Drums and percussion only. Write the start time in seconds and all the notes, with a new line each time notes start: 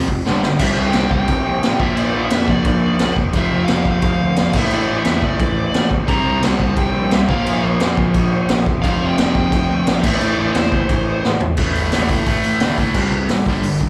0.08 kick
0.26 snare
0.43 snare
0.59 kick, crash
0.93 snare, crash
1.11 kick
1.28 kick, crash
1.63 snare, crash
1.80 kick
1.97 crash
2.30 snare, crash
2.48 kick
2.65 kick, crash
2.99 snare, crash
3.17 kick
3.33 kick, crash
3.68 snare, crash
3.85 kick
4.02 kick, crash
4.36 snare, crash
4.53 kick, crash
4.71 crash
5.05 snare, crash
5.22 kick
5.40 kick, crash
5.74 snare, crash
5.91 kick
6.08 kick, crash
6.43 snare, crash
6.60 kick
6.76 kick, crash
7.11 snare, crash
7.29 kick
7.46 crash
7.80 snare, crash
7.97 kick
8.14 kick, crash
8.49 snare, crash
8.66 kick
8.84 kick, crash
9.18 snare, crash
9.35 kick
9.52 kick, crash
9.87 snare, crash
10.04 kick, crash
10.21 crash
10.55 snare, crash
10.72 kick
10.89 kick, crash
11.24 snare
11.40 floor tom
11.57 kick, crash
11.75 open hi-hat
11.92 snare, open hi-hat
12.09 kick, open hi-hat
12.26 kick, open hi-hat
12.44 open hi-hat
12.60 snare, open hi-hat
12.78 kick, open hi-hat
12.94 kick, crash
13.29 snare, open hi-hat
13.46 kick
13.63 open hi-hat
13.81 kick